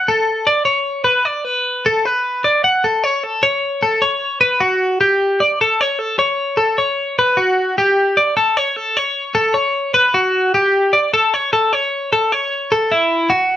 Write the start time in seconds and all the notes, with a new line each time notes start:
0.08 A4
0.47 D5
0.65 C#5
1.04 B4
1.25 D5
1.45 B4
1.86 A4
2.05 B4
2.44 D5
2.64 F#5
2.84 A4
3.04 C#5
3.24 A4
3.43 C#5
3.83 A4
4.02 C#5
4.41 B4
4.60 F#4
5.01 G4
5.40 D5
5.61 A4
5.81 C#5
5.99 A4
6.19 C#5
6.57 A4
6.78 C#5
7.19 B4
7.37 F#4
7.78 G4
8.17 D5
8.37 A4
8.57 C#5
8.76 A4
8.97 C#5
9.35 A4
9.54 C#5
9.94 B4
10.14 F#4
10.54 G4
10.93 D5
11.14 A4
11.34 C#5
11.53 A4
11.73 C#5
12.13 A4
12.32 C#5
12.72 A4
12.92 E4
13.30 F#4